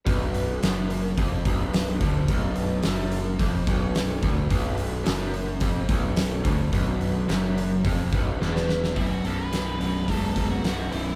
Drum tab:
HH |o-o-o-o-o-o-o-o-|o-o-o-o-o-o-o-o-|o-o-o-o-o-o-o-o-|o-o-o-o-o-o-----|
SD |----o-------o---|----o-------o---|----o-------o---|----o-------oooo|
BD |o-------o-o---o-|o-------o-o---o-|o-------o-o---o-|o-------o-o-----|

HH |o-o-o-o-o-o-o-o-|
SD |----o-------o---|
BD |o-------o-o-----|